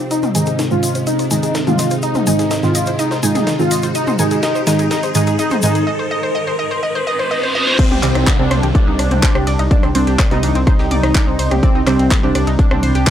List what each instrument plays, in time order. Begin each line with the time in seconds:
Already playing: synth drone C3 C4, ambient pad C4, riser
0.11 ambient pad C3 G#4 D#5, analog synth lead D#4, synth arpeggio sound D#5, closed hi-hat, shaker
0.23 synth arpeggio sound C5, mid tom, shaker
0.35 synth stab G#2 D#3 G#3, analog synth lead D#4, synth arpeggio sound G#5, closed hi-hat, open hi-hat, shaker
0.46 synth arpeggio sound G#4, closed hi-hat, shaker
0.59 synth arpeggio sound D#4, snare, closed hi-hat, shaker
0.71 synth stab G#2 D#3 G#3, synth arpeggio sound C4, analog synth lead F4, shaker
0.83 synth arpeggio sound D#5, closed hi-hat, open hi-hat, shaker
0.95 synth arpeggio sound C5, closed hi-hat, shaker
1.07 analog synth lead D#4, synth arpeggio sound D#5, closed hi-hat, shaker
1.19 synth arpeggio sound C5, open hi-hat, shaker
1.31 synth stab G#2 D#3 G#3, analog synth lead D#4, synth arpeggio sound G#5, closed hi-hat, open hi-hat, shaker
1.43 synth arpeggio sound G#4, closed hi-hat, shaker
1.55 synth arpeggio sound D#4, snare, closed hi-hat, shaker
1.67 synth stab G#2 D#3 G#3, synth arpeggio sound C4, analog synth lead F4, closed hi-hat, mid tom, shaker
1.79 synth arpeggio sound D#5, snare, closed hi-hat, open hi-hat, shaker
1.91 synth arpeggio sound C5, closed hi-hat, shaker
2.02 analog synth lead D#4, synth arpeggio sound D#5, closed hi-hat, shaker
2.15 synth arpeggio sound C5, closed hi-hat, mid tom, shaker
2.27 synth stab G#2 D#3 G#3, analog synth lead D#4, synth arpeggio sound G#5, closed hi-hat, open hi-hat, shaker
2.39 synth arpeggio sound G#4, snare, closed hi-hat, shaker
2.51 synth arpeggio sound D#4, snare, closed hi-hat, shaker
2.63 synth stab G#2 D#3 G#3, synth arpeggio sound C4, analog synth lead F4, snare, shaker
2.75 synth arpeggio sound D#5, closed hi-hat, open hi-hat, shaker
2.86 synth arpeggio sound C5, closed hi-hat, shaker
2.99 analog synth lead D#4, synth arpeggio sound D#5, closed hi-hat, shaker
3.11 synth arpeggio sound C5, snare, shaker
3.23 synth stab G#2 D#3 G#3, analog synth lead D#4, synth arpeggio sound G#5, closed hi-hat, open hi-hat, shaker
3.35 synth arpeggio sound G#4, snare, closed hi-hat, mid tom, shaker
3.47 synth arpeggio sound D#4, snare, closed hi-hat, shaker
3.59 synth stab G#2 D#3 G#3, synth arpeggio sound C4, analog synth lead F4, shaker
3.71 synth arpeggio sound D#5, open hi-hat, shaker
3.82 synth arpeggio sound C5, closed hi-hat, shaker
3.95 analog synth lead D#4, synth arpeggio sound D#5, closed hi-hat, shaker
4.07 synth arpeggio sound C5, mid tom, shaker
4.19 synth stab G#2 D#3 G#3, analog synth lead D#4, synth arpeggio sound G#5, closed hi-hat, open hi-hat, shaker
4.31 synth arpeggio sound G#4, closed hi-hat, shaker
4.43 analog synth lead D#4, synth arpeggio sound D#5, snare, closed hi-hat, shaker
4.55 synth arpeggio sound C5, shaker
4.67 synth stab G#2 D#3 G#3, analog synth lead D#4, synth arpeggio sound G#5, snare, closed hi-hat, open hi-hat, shaker
4.79 synth arpeggio sound G#4, closed hi-hat, shaker
4.91 analog synth lead D#4, synth arpeggio sound D#5, snare, closed hi-hat, shaker
5.03 synth arpeggio sound C5, open hi-hat, shaker
5.15 synth stab G#2 D#3 G#3, analog synth lead D#4, synth arpeggio sound G#5, closed hi-hat, open hi-hat, shaker
5.27 synth arpeggio sound G#4, closed hi-hat, shaker
5.39 analog synth lead D#4, synth arpeggio sound D#5, closed hi-hat, shaker
5.50 synth arpeggio sound C5, closed hi-hat, mid tom, shaker
5.62 synth stab G#2 D#3 G#3, analog synth lead D#4, synth arpeggio sound G#5, closed hi-hat, open hi-hat, shaker
5.75 synth arpeggio sound G#4, closed hi-hat, shaker
5.87 synth arpeggio sound D#5
5.99 synth arpeggio sound C5
6.11 synth arpeggio sound D#5
6.23 synth arpeggio sound C5
6.35 synth arpeggio sound D#5
6.47 synth arpeggio sound C5
6.59 synth arpeggio sound D#5
6.71 synth arpeggio sound C5
6.83 synth arpeggio sound D#5, reverse cymbal
6.95 synth arpeggio sound C5
7.07 synth arpeggio sound D#5
7.19 synth arpeggio sound C5
7.31 synth arpeggio sound D#5
7.43 synth arpeggio sound C5
7.55 synth arpeggio sound D#5
7.67 synth arpeggio sound C5
7.79 analog synth lead C4, ambient pad G4 D5 G5 C6, synth arpeggio sound C5 C6, kick, closed hi-hat, crash, downlifter
7.91 detuned saw bass C2, synth arpeggio sound G4 G5, mid tom
8.03 detuned saw bass C2, synth stab C3 G3 C4, analog synth lead C4, synth arpeggio sound D5 D6, clap, closed hi-hat, open hi-hat, ride
8.15 detuned saw bass C2, synth arpeggio sound D#4 D#5, cross-stick, closed hi-hat
8.27 synth arpeggio sound D4 D5, kick, snare, clap, closed hi-hat
8.39 detuned saw bass C2, synth stab C3 G3 C4, synth arpeggio sound C4 C5, analog synth lead D4
8.51 detuned saw bass C2, synth arpeggio sound C5 C6, cross-stick, closed hi-hat, open hi-hat, mid tom, ride
8.63 detuned saw bass C2, synth arpeggio sound G4 G5, closed hi-hat
8.75 analog synth lead D4, synth arpeggio sound D5 D6, kick, closed hi-hat
8.87 detuned saw bass C2, synth arpeggio sound D#4 D#5
8.99 detuned saw bass C2, synth arpeggio sound D4 D5, cross-stick, closed hi-hat, open hi-hat, ride
9.11 detuned saw bass C2, synth arpeggio sound C4 C5, closed hi-hat, mid tom
9.23 synth arpeggio sound C5 C6, kick, snare, clap, closed hi-hat
9.35 detuned saw bass C2, synth arpeggio sound G4 G5, cross-stick, closed hi-hat
9.47 detuned saw bass C2, synth arpeggio sound D5 D6, snare, closed hi-hat, open hi-hat, ride
9.59 detuned saw bass C2, synth arpeggio sound D#4 D#5, closed hi-hat
9.71 analog synth lead D4, synth arpeggio sound D4 D5, kick, closed hi-hat, mid tom
9.83 detuned saw bass C2, synth arpeggio sound C4 C5, cross-stick, closed hi-hat
9.95 detuned saw bass C2, synth stab C3 G3 C4, analog synth lead D4, synth arpeggio sound C5 C6, closed hi-hat, open hi-hat, ride
10.07 detuned saw bass C2, synth arpeggio sound G4 G5, snare, closed hi-hat
10.19 synth arpeggio sound D5 D6, kick, cross-stick, snare, clap, closed hi-hat
10.31 detuned saw bass C2, synth stab C3 G3 C4, analog synth lead D#4, synth arpeggio sound D#4 D#5, snare, open hi-hat, mid tom
10.43 detuned saw bass C2, synth arpeggio sound D4 D5, closed hi-hat, open hi-hat, ride
10.55 detuned saw bass C2, synth arpeggio sound C4 C5, closed hi-hat
10.67 analog synth lead D#4, synth arpeggio sound C5 C6, kick, cross-stick, closed hi-hat
10.79 detuned saw bass C2, synth arpeggio sound G4 G5, snare
10.91 detuned saw bass C2, synth arpeggio sound D5 D6, closed hi-hat, open hi-hat, mid tom, ride
11.03 detuned saw bass C2, synth arpeggio sound D#4 D#5, cross-stick, snare, closed hi-hat
11.15 synth arpeggio sound D4 D5, kick, snare, clap, closed hi-hat
11.27 detuned saw bass C2, synth arpeggio sound C4 C5
11.39 detuned saw bass C2, synth arpeggio sound C5 C6, open hi-hat, ride
11.51 detuned saw bass C2, synth arpeggio sound G4 G5, cross-stick, closed hi-hat, mid tom
11.63 analog synth lead C4, synth arpeggio sound D5 D6, ambient pad B5, kick, closed hi-hat
11.75 detuned saw bass C2, synth arpeggio sound D#4 D#5
11.87 detuned saw bass C2, synth stab C3 G3 C4, analog synth lead C4, synth arpeggio sound D4 D5, cross-stick, clap, closed hi-hat, open hi-hat, ride
11.99 detuned saw bass C2, synth arpeggio sound C4 C5, closed hi-hat
12.11 synth arpeggio sound C5 C6, kick, snare, clap, closed hi-hat, mid tom
12.23 detuned saw bass C2, synth stab C3 G3 C4, analog synth lead D4, synth arpeggio sound G4 G5
12.35 detuned saw bass C2, synth arpeggio sound D5 D6, cross-stick, closed hi-hat, open hi-hat, ride
12.47 detuned saw bass C2, synth arpeggio sound D#4 D#5, closed hi-hat
12.59 synth arpeggio sound D4 D5, analog synth lead D4, kick, closed hi-hat
12.71 detuned saw bass C2, synth arpeggio sound C4 C5, cross-stick, mid tom
12.83 detuned saw bass C2, synth arpeggio sound C5 C6, closed hi-hat, open hi-hat, ride
12.95 detuned saw bass C2, synth arpeggio sound G4 G5, closed hi-hat
13.07 synth arpeggio sound D5 D6, kick, snare, clap